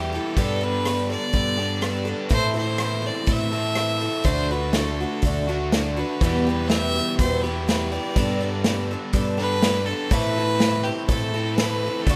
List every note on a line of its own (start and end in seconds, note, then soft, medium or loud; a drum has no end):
0.00 0.18 E2 medium
0.00 0.35 E2 medium
0.00 0.36 B2 medium
0.00 0.13 E3 medium
0.00 0.13 G3 medium
0.00 0.37 B3 medium
0.00 0.13 E4 medium
0.00 0.11 G4 medium
0.00 0.16 G4 medium
0.13 0.36 E3 soft
0.13 0.35 G3 soft
0.13 0.38 E4 soft
0.13 0.37 G4 medium
0.13 0.38 A4 medium
0.37 1.57 G2 medium
0.37 1.16 G2 medium
0.37 1.58 D3 medium
0.37 0.61 G3 medium
0.37 0.61 B3 medium
0.37 0.62 D4 medium
0.37 1.57 G4 medium
0.37 0.60 A4 medium
0.37 0.64 A4 medium
0.37 kick loud
0.37 open hi-hat soft
0.61 0.86 B3 soft
0.61 0.86 D4 medium
0.61 0.85 A4 medium
0.61 1.10 B4 loud
0.85 1.10 G3 medium
0.85 1.11 B3 medium
0.85 1.10 D4 medium
0.85 1.09 A4 medium
0.85 cross-stick medium
0.85 open hi-hat soft
1.10 1.32 B3 soft
1.10 1.34 D4 soft
1.10 1.34 A4 soft
1.10 2.04 D5 loud
1.33 2.13 G2 medium
1.33 1.58 G3 medium
1.33 1.58 B3 medium
1.33 1.57 D4 medium
1.33 1.56 A4 medium
1.33 kick medium
1.33 open hi-hat soft
1.57 1.81 D3 medium
1.57 1.81 G3 medium
1.57 1.81 B3 soft
1.57 1.82 D4 soft
1.57 1.81 G4 medium
1.57 1.82 A4 medium
1.61 1.80 G2 medium
1.81 2.29 G2 medium
1.81 2.30 D3 medium
1.81 2.06 G3 medium
1.81 2.07 B3 medium
1.81 2.06 D4 medium
1.81 2.31 G4 medium
1.81 2.04 A4 medium
1.81 cross-stick loud
1.81 open hi-hat soft
2.05 2.31 B3 soft
2.05 2.31 D4 medium
2.05 2.31 A4 medium
2.29 2.55 A2 medium
2.29 3.09 A2 medium
2.29 2.55 E3 medium
2.29 2.56 C4 medium
2.29 2.55 E4 medium
2.29 2.53 A4 medium
2.29 2.55 C5 loud
2.29 kick loud
2.29 open hi-hat soft
2.54 2.78 C4 soft
2.54 2.80 E4 soft
2.54 2.79 A4 medium
2.54 3.08 C5 loud
2.78 3.04 E3 medium
2.78 3.04 C4 medium
2.78 3.02 E4 medium
2.78 3.01 A4 medium
2.78 cross-stick loud
2.78 open hi-hat soft
3.02 3.27 C4 soft
3.02 3.28 E4 soft
3.02 3.28 A4 soft
3.06 3.33 D5 medium
3.26 3.53 A2 medium
3.26 4.07 A2 medium
3.26 3.53 E3 medium
3.26 3.53 C4 medium
3.26 3.53 E4 medium
3.26 3.51 A4 medium
3.26 kick loud
3.26 open hi-hat soft
3.32 4.26 E5 loud
3.53 3.74 A2 medium
3.53 3.75 E3 medium
3.53 3.75 C4 soft
3.53 3.77 E4 soft
3.53 3.77 A4 medium
3.75 4.24 A2 medium
3.75 4.01 E3 medium
3.75 4.01 C4 medium
3.75 4.01 E4 medium
3.75 4.00 A4 medium
3.75 cross-stick loud
3.75 open hi-hat soft
4.01 4.25 C4 soft
4.01 4.26 E4 medium
4.01 4.26 A4 medium
4.24 5.04 D2 medium
4.24 4.50 D3 medium
4.24 4.51 A3 medium
4.24 4.51 D4 medium
4.24 4.50 F#4 medium
4.24 4.52 C5 loud
4.24 kick loud
4.24 open hi-hat soft
4.51 4.75 A3 soft
4.51 4.76 D4 soft
4.51 4.75 F#4 medium
4.51 4.77 B4 medium
4.73 4.99 D3 soft
4.73 5.00 A3 medium
4.73 5.73 A4 medium
4.73 snare medium
4.73 open hi-hat soft
4.77 5.01 D4 medium
4.77 4.99 F#4 medium
5.00 5.24 A3 soft
5.00 5.25 D4 soft
5.00 5.24 F#4 soft
5.22 6.02 D2 medium
5.22 5.49 D3 medium
5.22 5.49 A3 medium
5.22 kick loud
5.22 open hi-hat soft
5.26 5.49 D4 medium
5.26 5.47 F#4 medium
5.49 5.71 D3 medium
5.49 5.72 A3 soft
5.49 5.73 D4 medium
5.49 5.73 F#4 medium
5.72 5.97 D3 medium
5.72 5.97 A3 medium
5.72 5.98 D4 medium
5.72 5.96 F#4 medium
5.72 snare loud
5.72 open hi-hat soft
5.96 6.22 D4 soft
5.96 6.21 F#4 medium
5.96 6.69 B4 medium
6.01 6.23 A3 soft
6.21 7.00 E2 medium
6.21 6.46 E2 medium
6.21 6.47 B2 medium
6.21 6.47 E3 medium
6.21 6.47 G3 medium
6.21 6.47 B3 medium
6.21 6.45 G4 medium
6.21 kick loud
6.21 open hi-hat soft
6.47 6.69 E3 soft
6.47 6.71 G3 soft
6.47 6.72 B3 soft
6.47 6.71 G4 medium
6.68 6.95 E3 medium
6.68 7.17 E5 loud
6.68 snare loud
6.68 open hi-hat soft
6.72 6.96 G3 medium
6.72 6.95 B3 medium
6.72 6.94 G4 medium
6.96 7.20 E3 soft
6.96 7.21 G3 soft
6.96 7.20 B3 soft
6.96 7.19 G4 soft
7.18 7.98 E2 medium
7.18 7.44 E2 medium
7.18 7.44 B2 medium
7.18 7.45 E3 medium
7.18 7.44 C5 medium
7.18 kick loud
7.18 open hi-hat medium
7.22 7.45 G3 medium
7.22 7.44 B3 medium
7.22 7.43 G4 medium
7.42 7.67 B2 medium
7.42 7.67 G3 soft
7.42 7.68 B3 soft
7.42 7.68 G4 medium
7.42 7.67 B4 medium
7.46 7.66 E2 medium
7.46 7.66 E3 soft
7.68 8.15 E2 medium
7.68 8.15 B2 medium
7.68 7.92 E3 medium
7.68 7.92 G3 medium
7.68 7.92 B3 medium
7.68 7.91 G4 medium
7.68 7.92 B4 medium
7.68 snare medium
7.68 open hi-hat medium
7.91 8.15 G3 soft
7.91 8.16 B3 soft
7.91 8.16 G4 medium
7.91 8.89 D5 medium
7.96 8.16 E3 soft
8.15 9.36 G2 medium
8.15 8.95 G2 loud
8.15 9.37 D3 medium
8.15 8.41 G3 medium
8.15 8.41 B3 medium
8.15 8.41 D4 medium
8.15 9.37 G4 medium
8.15 8.39 A4 medium
8.15 kick loud
8.15 open hi-hat soft
8.41 8.65 B3 soft
8.41 8.66 D4 soft
8.41 8.65 A4 medium
8.64 8.89 G3 medium
8.64 8.90 B3 medium
8.64 8.91 D4 medium
8.64 8.90 A4 medium
8.64 snare loud
8.64 open hi-hat medium
8.91 9.13 B3 soft
8.91 9.14 D4 soft
8.91 9.15 A4 medium
9.13 9.92 G2 medium
9.13 9.38 G3 medium
9.13 9.38 B3 medium
9.13 9.38 D4 medium
9.13 9.36 A4 medium
9.13 kick loud
9.13 open hi-hat soft
9.37 9.62 G2 medium
9.37 9.62 D3 medium
9.37 9.62 G3 medium
9.37 9.62 B3 soft
9.37 9.63 D4 medium
9.37 9.61 G4 medium
9.37 9.62 A4 medium
9.37 9.87 B4 loud
9.62 10.10 G2 medium
9.62 10.10 D3 medium
9.62 9.87 G3 medium
9.62 9.88 B3 medium
9.62 9.87 D4 medium
9.62 snare loud
9.62 open hi-hat soft
9.66 10.12 G4 medium
9.66 9.86 A4 medium
9.75 snare soft
9.86 10.12 D4 soft
9.86 10.13 A4 medium
9.86 10.11 A4 soft
9.90 10.13 B3 soft
10.11 10.90 A2 loud
10.11 10.36 A2 medium
10.11 10.36 E3 medium
10.11 10.37 C4 medium
10.11 10.37 E4 medium
10.11 10.37 A4 medium
10.11 10.85 B4 loud
10.11 kick loud
10.11 open hi-hat soft
10.38 10.61 C4 soft
10.38 10.62 E4 soft
10.38 10.61 A4 medium
10.60 10.85 E3 medium
10.60 10.86 C4 medium
10.60 snare loud
10.60 open hi-hat soft
10.64 10.86 E4 medium
10.64 10.84 A4 medium
10.83 11.07 G4 medium
10.83 11.09 A4 soft
10.87 11.10 C4 soft
10.87 11.10 E4 soft
11.07 11.88 A2 medium
11.07 11.34 A2 medium
11.07 11.34 E3 medium
11.07 11.35 C4 medium
11.07 11.56 A4 medium
11.07 kick loud
11.07 open hi-hat soft
11.12 11.34 E4 medium
11.12 11.33 A4 medium
11.34 11.57 A2 medium
11.34 11.58 E3 medium
11.34 11.58 C4 soft
11.34 11.59 E4 soft
11.34 11.58 A4 medium
11.54 12.05 A2 medium
11.54 11.83 E3 medium
11.54 12.03 B4 medium
11.54 snare loud
11.54 open hi-hat soft
11.60 11.83 C4 medium
11.60 11.84 E4 medium
11.60 11.83 A4 medium
11.84 12.09 C4 soft
11.84 12.09 E4 soft
11.84 12.08 A4 soft
12.02 12.16 A4 loud
12.06 12.16 D2 medium
12.06 12.16 D3 medium
12.06 12.16 F#3 medium
12.06 12.16 A3 medium
12.06 12.16 D4 medium
12.06 kick loud
12.06 open hi-hat medium
12.10 12.16 F#4 medium